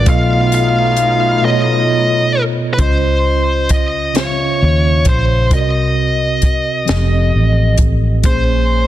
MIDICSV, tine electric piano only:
0, 0, Header, 1, 2, 480
1, 0, Start_track
1, 0, Tempo, 909091
1, 34, Time_signature, 6, 3, 24, 8
1, 4683, End_track
2, 0, Start_track
2, 0, Title_t, "Tine electric piano"
2, 0, Program_c, 0, 4
2, 0, Control_c, 0, 64, 127
2, 27, Note_on_c, 0, 47, 76
2, 31, Note_on_c, 0, 59, 74
2, 40, Note_on_c, 0, 65, 68
2, 41, Control_c, 0, 64, 0
2, 47, Note_on_c, 0, 69, 75
2, 54, Note_on_c, 0, 75, 84
2, 121, Control_c, 0, 64, 127
2, 608, Note_off_c, 0, 47, 0
2, 610, Note_off_c, 0, 59, 0
2, 615, Note_off_c, 0, 65, 0
2, 618, Note_off_c, 0, 69, 0
2, 622, Note_off_c, 0, 75, 0
2, 743, Note_on_c, 0, 47, 61
2, 749, Note_on_c, 0, 59, 55
2, 757, Note_on_c, 0, 65, 60
2, 765, Note_on_c, 0, 69, 62
2, 771, Note_on_c, 0, 73, 59
2, 797, Note_off_c, 0, 73, 0
2, 806, Note_on_c, 0, 75, 73
2, 1327, Note_off_c, 0, 47, 0
2, 1329, Note_off_c, 0, 59, 0
2, 1333, Note_off_c, 0, 65, 0
2, 1337, Note_off_c, 0, 69, 0
2, 1358, Note_off_c, 0, 75, 0
2, 1464, Note_on_c, 0, 49, 66
2, 1469, Note_on_c, 0, 61, 68
2, 1474, Note_on_c, 0, 65, 66
2, 1481, Control_c, 0, 64, 0
2, 1483, Note_on_c, 0, 72, 63
2, 1489, Note_on_c, 0, 75, 73
2, 1584, Control_c, 0, 64, 127
2, 2047, Note_off_c, 0, 49, 0
2, 2050, Note_off_c, 0, 61, 0
2, 2052, Note_off_c, 0, 65, 0
2, 2057, Note_off_c, 0, 72, 0
2, 2059, Note_off_c, 0, 75, 0
2, 2180, Note_on_c, 0, 49, 59
2, 2184, Note_on_c, 0, 61, 51
2, 2194, Note_on_c, 0, 65, 57
2, 2200, Note_on_c, 0, 73, 53
2, 2207, Note_on_c, 0, 76, 47
2, 2235, Note_off_c, 0, 76, 0
2, 2243, Note_on_c, 0, 77, 65
2, 2765, Note_off_c, 0, 49, 0
2, 2767, Note_off_c, 0, 61, 0
2, 2772, Note_off_c, 0, 65, 0
2, 2775, Note_off_c, 0, 73, 0
2, 2796, Note_off_c, 0, 77, 0
2, 2902, Note_on_c, 0, 48, 67
2, 2908, Note_on_c, 0, 60, 59
2, 2913, Note_on_c, 0, 66, 68
2, 2921, Control_c, 0, 64, 0
2, 2922, Note_on_c, 0, 70, 70
2, 2928, Note_on_c, 0, 74, 60
2, 2955, Note_off_c, 0, 74, 0
2, 2963, Note_on_c, 0, 75, 84
2, 3001, Control_c, 0, 64, 127
2, 3486, Note_off_c, 0, 48, 0
2, 3489, Note_off_c, 0, 60, 0
2, 3492, Note_off_c, 0, 66, 0
2, 3496, Note_off_c, 0, 70, 0
2, 3516, Note_off_c, 0, 75, 0
2, 3618, Note_on_c, 0, 53, 72
2, 3625, Note_on_c, 0, 60, 68
2, 3634, Note_on_c, 0, 67, 67
2, 3639, Control_c, 0, 64, 0
2, 3639, Note_on_c, 0, 69, 68
2, 3647, Note_on_c, 0, 75, 83
2, 3737, Control_c, 0, 64, 127
2, 4204, Note_off_c, 0, 53, 0
2, 4207, Note_off_c, 0, 60, 0
2, 4212, Note_off_c, 0, 67, 0
2, 4214, Note_off_c, 0, 69, 0
2, 4219, Note_off_c, 0, 75, 0
2, 4339, Note_on_c, 0, 46, 71
2, 4347, Note_on_c, 0, 58, 65
2, 4352, Note_on_c, 0, 61, 62
2, 4362, Control_c, 0, 64, 0
2, 4362, Note_on_c, 0, 68, 64
2, 4369, Note_on_c, 0, 72, 76
2, 4447, Control_c, 0, 64, 127
2, 4683, Note_off_c, 0, 46, 0
2, 4683, Note_off_c, 0, 58, 0
2, 4683, Note_off_c, 0, 61, 0
2, 4683, Note_off_c, 0, 68, 0
2, 4683, Note_off_c, 0, 72, 0
2, 4683, End_track
0, 0, End_of_file